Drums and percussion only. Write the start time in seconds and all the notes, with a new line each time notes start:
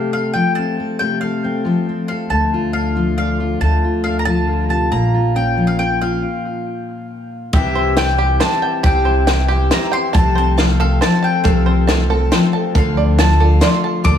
7.53 kick, closed hi-hat
7.97 snare, closed hi-hat
8.40 snare, closed hi-hat
8.84 kick, closed hi-hat
9.27 snare, closed hi-hat
9.71 snare, closed hi-hat
10.15 kick, closed hi-hat
10.58 snare, closed hi-hat
11.02 snare, closed hi-hat
11.45 kick, closed hi-hat
11.89 snare, closed hi-hat
12.32 snare, closed hi-hat
12.75 kick, closed hi-hat
13.19 snare, closed hi-hat
13.61 snare, closed hi-hat
14.05 kick, closed hi-hat